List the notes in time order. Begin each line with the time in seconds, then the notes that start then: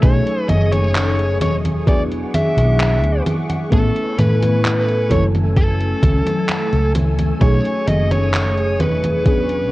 Already playing: A3
0.01 B1 F#3 A3 C#4 D#4 G#4 C#5 G#5 C#6 D#6, kick, closed hi-hat, high conga
0.27 closed hi-hat
0.49 F#1 D#5, closed hi-hat, high conga
0.73 C#5, closed hi-hat, high conga
0.96 clap, closed hi-hat, high conga
1.19 closed hi-hat
1.41 E1 C#5, closed hi-hat, high conga
1.65 closed hi-hat, high conga
1.86 F#3 B3 D4 E4 G#4 D5 F#5 C#6 D6, kick, closed hi-hat, high conga
2.12 closed hi-hat
2.34 E5, closed hi-hat, high conga
2.57 B1, closed hi-hat, high conga
2.80 clap, closed hi-hat, high conga
3.03 D2, closed hi-hat
3.26 closed hi-hat, high conga
3.50 closed hi-hat, high conga
3.70 A1 A3 B3 C#4 E4 A4 B4 G#5, kick, closed hi-hat, high conga
3.96 closed hi-hat
4.18 A2 B4, closed hi-hat, high conga
4.42 closed hi-hat, high conga
4.65 clap, closed hi-hat, high conga
4.88 closed hi-hat
5.09 F#1 F#3 A3 C#4 E4 A4 C#5 G#5 E6, kick, closed hi-hat, high conga
5.35 closed hi-hat, high conga
5.57 A4, kick, closed hi-hat, high conga
5.81 closed hi-hat
6.03 C#2, kick, closed hi-hat, high conga
6.27 closed hi-hat, high conga
6.49 clap, closed hi-hat, high conga
6.73 C#2, closed hi-hat
6.95 closed hi-hat, high conga
7.19 closed hi-hat, high conga
7.40 B1 F#3 A3 C#4 D#4 G#4 C#5 C#6 D#6, kick, closed hi-hat, high conga
7.65 closed hi-hat
7.87 F#1 D#5, closed hi-hat, high conga
8.11 C#5, closed hi-hat, high conga
8.34 clap, closed hi-hat, high conga
8.57 closed hi-hat
8.79 E1 B4, closed hi-hat, high conga
9.04 closed hi-hat, high conga
9.24 F#3 B3 C#4 D4 G#4 F#5 D6, kick, closed hi-hat, high conga
9.49 closed hi-hat